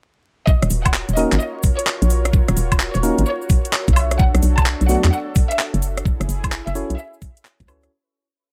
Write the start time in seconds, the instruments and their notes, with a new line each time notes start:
0.47 analog synth pad F4 F#4 A#4 C#5, violin section D#5, kick, cabasa
0.62 fm bass D#1, cross-stick, closed hi-hat, cabasa
0.70 fm bass D#1, open hi-hat, cabasa
0.86 violin section F#5, kick, closed hi-hat, cabasa, high woodblock
0.94 clap, cabasa
1.09 fm bass D#1, closed hi-hat, cabasa
1.17 tine electric piano A#3 C#4 D#4 F#4 A#4, violin section D#5, open hi-hat, cabasa
1.32 fm bass G#1, clap, closed hi-hat, cabasa
1.40 violin section D#5, cabasa
1.63 kick, open hi-hat, cabasa
1.79 violin section C#5, closed hi-hat, cabasa
1.86 clap, cabasa
2.02 fm bass A#1, closed hi-hat, cabasa
2.10 open hi-hat, cabasa
2.25 cross-stick, closed hi-hat, cabasa
2.33 kick, cabasa
2.48 fm bass D#1, cross-stick, closed hi-hat, cabasa
2.57 fm bass D#1, open hi-hat, cabasa
2.72 kick, closed hi-hat, cabasa, high woodblock
2.80 clap, cabasa
2.94 fm bass D#1, violin section C#5, closed hi-hat, cabasa
3.03 tine electric piano A#3 C#4 D#4 F#4 A#4, open hi-hat, cabasa
3.18 fm bass G#1, closed hi-hat, cabasa
3.26 violin section C#5, cabasa
3.42 cabasa
3.49 kick, open hi-hat, cabasa
3.65 closed hi-hat, cabasa
3.73 clap, cabasa
3.88 fm bass B1, kick, closed hi-hat, cabasa
3.96 analog synth pad D4 A4, violin section E5, open hi-hat, cabasa, high woodblock
4.11 cross-stick, closed hi-hat, cabasa
4.19 violin section F#5, kick, cabasa
4.35 fm bass B1, cross-stick, closed hi-hat, cabasa
4.43 fm bass B1, open hi-hat, cabasa
4.58 violin section A5, kick, closed hi-hat, cabasa, high woodblock
4.66 clap, cabasa
4.81 fm bass B1, closed hi-hat, cabasa
4.89 tine electric piano F#3 A3 B3 D4 F#4, violin section F#5, open hi-hat, cabasa
5.04 fm bass E2, clap, closed hi-hat, cabasa
5.12 violin section F#5, cabasa
5.35 kick, open hi-hat, cabasa
5.51 violin section E5, closed hi-hat, cabasa
5.59 clap, cabasa
5.74 fm bass F#1, closed hi-hat, cabasa
5.82 open hi-hat, cabasa
5.97 cross-stick, closed hi-hat, cabasa
6.05 analog synth pad E4 G#4, kick, cabasa
6.20 fm bass F#1, cross-stick, closed hi-hat, cabasa
6.29 fm bass F#1, open hi-hat, cabasa
6.44 kick, closed hi-hat, cabasa, high woodblock
6.52 clap, cabasa
6.67 fm bass F#1, violin section E5, closed hi-hat, cabasa
6.75 tine electric piano C#4 E4 F#4 A4 C#5, open hi-hat, cabasa
6.90 fm bass B1, closed hi-hat, cabasa
6.98 violin section E5, cabasa
7.14 cabasa
7.22 kick, open hi-hat, cabasa
7.37 closed hi-hat, cabasa
7.45 clap, cabasa
7.60 fm bass C#2, kick, closed hi-hat, cabasa
7.68 tine electric piano C#4 E4 F#4 A4 C#5, violin section B4, open hi-hat, cabasa, high woodblock
7.83 cross-stick, closed hi-hat, cabasa